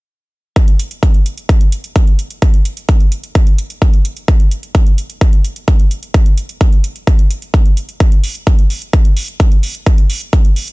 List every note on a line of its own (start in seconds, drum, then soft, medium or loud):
0.56 kick loud
0.56 closed hi-hat medium
0.68 closed hi-hat soft
0.79 closed hi-hat medium
0.91 closed hi-hat soft
1.03 kick loud
1.03 closed hi-hat medium
1.14 closed hi-hat soft
1.26 closed hi-hat medium
1.38 closed hi-hat soft
1.49 kick loud
1.49 closed hi-hat medium
1.61 closed hi-hat soft
1.72 closed hi-hat medium
1.84 closed hi-hat soft
1.96 kick loud
1.96 closed hi-hat medium
2.07 closed hi-hat soft
2.19 closed hi-hat medium
2.30 closed hi-hat soft
2.42 kick loud
2.42 closed hi-hat medium
2.54 closed hi-hat soft
2.65 closed hi-hat medium
2.77 closed hi-hat soft
2.89 kick loud
2.89 closed hi-hat medium
3.00 closed hi-hat soft
3.12 closed hi-hat medium
3.24 closed hi-hat soft
3.35 kick loud
3.35 closed hi-hat medium
3.47 closed hi-hat soft
3.58 closed hi-hat medium
3.70 closed hi-hat soft
3.82 kick loud
3.82 closed hi-hat medium
3.93 closed hi-hat soft
4.05 closed hi-hat medium
4.17 closed hi-hat soft
4.28 kick loud
4.28 closed hi-hat medium
4.40 closed hi-hat soft
4.51 closed hi-hat medium
4.63 closed hi-hat soft
4.75 kick loud
4.75 closed hi-hat medium
4.86 closed hi-hat soft
4.98 closed hi-hat medium
5.10 closed hi-hat soft
5.21 kick loud
5.21 closed hi-hat medium
5.33 closed hi-hat soft
5.44 closed hi-hat medium
5.56 closed hi-hat soft
5.68 kick loud
5.68 closed hi-hat medium
5.79 closed hi-hat soft
5.91 closed hi-hat medium
6.03 closed hi-hat soft
6.14 kick loud
6.14 closed hi-hat medium
6.26 closed hi-hat soft
6.37 closed hi-hat medium
6.49 closed hi-hat soft
6.61 kick loud
6.61 closed hi-hat medium
6.72 closed hi-hat soft
6.84 closed hi-hat medium
6.96 closed hi-hat soft
7.07 kick loud
7.07 closed hi-hat medium
7.19 closed hi-hat soft
7.31 closed hi-hat medium
7.42 closed hi-hat soft
7.54 kick loud
7.54 closed hi-hat medium
7.65 closed hi-hat soft
7.77 closed hi-hat medium
7.89 closed hi-hat soft
8.00 kick loud
8.00 closed hi-hat medium
8.12 closed hi-hat soft
8.24 open hi-hat loud
8.35 closed hi-hat soft
8.47 kick loud
8.47 closed hi-hat medium
8.58 closed hi-hat soft
8.70 open hi-hat medium
8.82 closed hi-hat soft
8.93 kick loud
8.93 closed hi-hat medium
9.05 closed hi-hat soft
9.17 open hi-hat loud
9.28 closed hi-hat soft
9.40 kick loud
9.40 closed hi-hat medium
9.52 closed hi-hat soft
9.63 open hi-hat medium
9.75 closed hi-hat soft
9.86 kick loud
9.86 closed hi-hat medium
9.98 closed hi-hat soft
10.10 open hi-hat loud
10.21 closed hi-hat soft
10.33 kick loud
10.33 closed hi-hat medium
10.45 closed hi-hat soft
10.56 open hi-hat medium
10.68 closed hi-hat soft